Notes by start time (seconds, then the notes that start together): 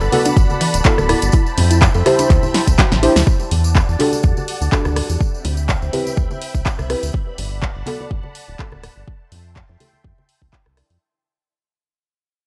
Already playing: D5 F#5 A5 B5
0.01 G1 A4, tambourine
0.12 B3 F#4 A4, open hi-hat, high conga
0.25 D4, closed hi-hat, tambourine, high bongo, high conga
0.37 G1, kick, closed hi-hat, tambourine
0.50 tambourine, high conga
0.61 E3, open hi-hat
0.74 D1, closed hi-hat, tambourine, high bongo
0.84 B3 E4 F#4 A4, kick, clap, closed hi-hat, tambourine
0.98 D1, cross-stick, tambourine, high conga
1.09 E4, cross-stick, open hi-hat, high bongo, low conga
1.22 G1, closed hi-hat, tambourine
1.32 E4 C5 E5 G5, kick, closed hi-hat, tambourine
1.46 tambourine
1.57 F2, open hi-hat, high bongo, low conga
1.71 E4, closed hi-hat, tambourine
1.82 kick, clap, closed hi-hat, tambourine
1.94 F2 A4, tambourine, high bongo
2.06 E4 G4 C5, cross-stick, clap, open hi-hat, high conga
2.19 D4, closed hi-hat, tambourine, high conga
2.30 D2 G5 A5, kick, clap, closed hi-hat, tambourine
2.43 tambourine, high bongo, high conga, low conga
2.54 E4, snare, open hi-hat
2.67 C2, kick, closed hi-hat, tambourine
2.79 F#4, kick, snare, clap, closed hi-hat, tambourine, high bongo
2.91 A1, snare, tambourine, high conga
3.03 D4 E4 G4 C5, open hi-hat
3.16 D2, snare, open hi-hat, tambourine
3.27 D5 F#5 A5, kick
3.40 tambourine, high bongo
3.51 E2, open hi-hat, low conga
3.64 tambourine
3.75 kick, clap, tambourine, high bongo
3.89 E2, tambourine
3.99 D4 F#4 G4 A4, clap, open hi-hat, high conga
4.13 tambourine, high conga
4.23 E2, kick, tambourine, high bongo
4.37 tambourine, high conga
4.48 open hi-hat
4.61 D2, tambourine, high bongo
4.72 D4 F#4 G4 A4, kick, clap, tambourine
4.85 D2, cross-stick, tambourine, high conga
4.96 cross-stick, open hi-hat, low conga
5.09 E2, tambourine, high bongo
5.20 C4 E5 G5 B5, kick, tambourine
5.34 tambourine
5.44 D2, open hi-hat, high bongo, low conga
5.57 tambourine
5.69 kick, clap, tambourine
5.82 D2, tambourine
5.93 C4 E4 G4 B4, open hi-hat, high bongo, high conga
6.07 tambourine, high conga
6.17 D2, kick, tambourine
6.30 tambourine, high bongo, high conga
6.42 open hi-hat
6.55 C2, kick, tambourine
6.66 kick, clap, tambourine
6.79 C2, cross-stick, tambourine, high bongo, high conga
6.90 C4 E4 G4 B4, cross-stick, open hi-hat
7.03 D2, open hi-hat, tambourine
7.14 D5 F#5 A5, kick, high bongo
7.38 G1, open hi-hat, low conga
7.62 kick, clap, high bongo
7.76 G1
7.86 B3 F#4 A4, clap, open hi-hat, high conga
8.00 high bongo, high conga
8.11 G1, kick
8.23 high conga
8.35 open hi-hat
8.48 D1, high bongo
8.59 B3 F#4 A4, kick, clap
8.72 D1, cross-stick, high conga
8.83 cross-stick, open hi-hat, high bongo, low conga
8.96 G1
9.07 E5 G5 C6, kick
9.32 F2, open hi-hat, high bongo, low conga
9.56 kick, clap
9.69 F2, high bongo
9.80 E4 G4 A4, open hi-hat, high conga
9.93 high conga
10.04 F2, kick
10.18 high bongo, high conga
10.29 open hi-hat
10.42 C2, kick
10.53 kick, clap, high bongo
10.66 C2, cross-stick, high conga
10.77 E4 G4 D5, cross-stick, open hi-hat
10.90 F2, open hi-hat